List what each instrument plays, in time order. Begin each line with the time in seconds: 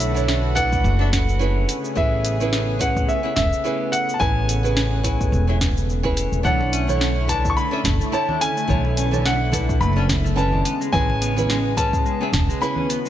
Already playing: upright bass B1, analog synth pad D3 A3 F#4 B4, nylon-string guitar D4 E4 A4 C#5, grand piano E5
0.00 open hi-hat, cabasa
0.14 nylon-string guitar D4 E4 A4 C#5, cabasa
0.28 snare, cabasa
0.55 nylon-string guitar D4 E4 A4 B4, grand piano F#5, kick, open hi-hat, cabasa
0.73 kick, cabasa
0.84 upright bass F#1, cabasa
0.99 nylon-string guitar D4 E4 A4 E5
1.13 kick, snare, open hi-hat, cabasa
1.29 cabasa
1.39 nylon-string guitar C#4 E4 G#4 B4, cabasa
1.68 analog synth pad C#3 B3 G#4, open hi-hat, cabasa
1.85 cabasa
1.95 upright bass A1, nylon-string guitar C#4 E4 G#4 B4, grand piano E5, kick, cabasa
2.25 open hi-hat, cabasa
2.40 nylon-string guitar C#4 E4 G#4 B4, cabasa
2.53 snare, cabasa
2.79 nylon-string guitar C#4 E4 G#4 B4, grand piano F#5, kick, open hi-hat, cabasa
2.97 kick, cabasa
3.09 grand piano E5, cabasa
3.23 nylon-string guitar C#4 E4 G#4 E5
3.36 upright bass E1, grand piano E5, kick, snare, open hi-hat, cabasa
3.53 cabasa
3.64 nylon-string guitar C#4 E4 G#4 B4, cabasa
3.92 grand piano F#5, open hi-hat, cabasa
4.09 cabasa
4.14 grand piano A5
4.19 upright bass A1, nylon-string guitar C#4 E4 G#4 B4, grand piano G#5, kick, cabasa
4.49 open hi-hat, cabasa
4.63 nylon-string guitar C#4 E4 G#4 B4, cabasa
4.77 snare, cabasa
5.03 nylon-string guitar C#4 E4 G#4 B4, kick, open hi-hat, cabasa
5.21 kick, cabasa
5.32 upright bass E1, cabasa
5.47 nylon-string guitar C#4 E4 G#4 E5
5.61 kick, snare, open hi-hat, cabasa
5.77 cabasa
5.90 cabasa
6.03 nylon-string guitar C#4 E4 G#4 B4, kick
6.17 open hi-hat, cabasa
6.32 upright bass E1, cabasa
6.43 upright bass B1, analog synth pad D3 A3 E4 C#5, clean electric guitar A3, nylon-string guitar D4 E4 A4 C#5, grand piano F#5, kick, high conga, cabasa
6.61 muted conga
6.73 clean electric guitar C#4, open hi-hat, cabasa
6.87 nylon-string guitar D3 E4 A4 C#5, high conga, cabasa
7.00 clean electric guitar A3, snare, cabasa
7.28 nylon-string guitar D3 E4 A4 B4, clean electric guitar D4, grand piano A5, kick, open hi-hat, muted conga, high conga, cabasa
7.45 kick, cabasa
7.50 grand piano C#6
7.57 clean electric guitar A3, grand piano B5, cabasa
7.71 clean electric guitar C#4, nylon-string guitar D4 E4 A4 E5
7.84 upright bass F#1, kick, snare, open hi-hat, high conga, low conga, cabasa
8.01 clean electric guitar A3, cabasa
8.12 nylon-string guitar D3 E4 A4 C#5, grand piano A5, cabasa
8.29 clean electric guitar D4, high conga
8.41 clean electric guitar C#4, grand piano G#5, open hi-hat, cabasa
8.57 clean electric guitar A3, cabasa
8.68 upright bass B1, nylon-string guitar D3 E4 A4 C#5, clean electric guitar A3, analog synth pad B3, kick, high conga, cabasa
8.85 muted conga
8.97 clean electric guitar C#4, open hi-hat, muted conga, cabasa
9.11 nylon-string guitar D3 E4 A4 C#5, high conga, cabasa
9.25 clean electric guitar A3, grand piano F#5, snare, cabasa
9.52 nylon-string guitar D3 E4 A4 B4, clean electric guitar D4, kick, open hi-hat, muted conga, high conga, cabasa
9.69 kick, cabasa
9.81 upright bass F#1, clean electric guitar A3, grand piano B5, cabasa
9.96 clean electric guitar C#4, nylon-string guitar D4 E4 A4 E5
10.09 kick, snare, open hi-hat, muted conga, high conga, cabasa
10.24 clean electric guitar A3, cabasa
10.36 nylon-string guitar G#3 C#4 E4 B4, grand piano A5, cabasa
10.52 clean electric guitar D4, high conga
10.65 analog synth pad C#3 G#3, clean electric guitar B3, open hi-hat, cabasa
10.81 clean electric guitar G#3, cabasa
10.92 upright bass A1, clean electric guitar G#3, nylon-string guitar C#4 E4 G#4 B4, grand piano G#5, kick, high conga, cabasa
11.10 muted conga
11.21 clean electric guitar B3, open hi-hat, cabasa
11.36 nylon-string guitar C#4 E4 G#4 B4, high conga, cabasa
11.49 clean electric guitar G#3, snare, cabasa
11.77 nylon-string guitar G#3 C#4 E4 B4, clean electric guitar C#4, grand piano A5, kick, open hi-hat, muted conga, high conga, cabasa
11.93 kick, cabasa
12.06 clean electric guitar G#3, cabasa
12.21 clean electric guitar B3, nylon-string guitar C#4 E4 G#4 E5
12.33 upright bass E1, kick, snare, open hi-hat, high conga, low conga, cabasa
12.49 clean electric guitar G#3, cabasa
12.61 nylon-string guitar C#4 E4 G#4 B4, grand piano B5, cabasa
12.76 clean electric guitar C#4, high conga
12.89 clean electric guitar B3, analog synth pad F#4, open hi-hat, cabasa
13.05 clean electric guitar G#3, cabasa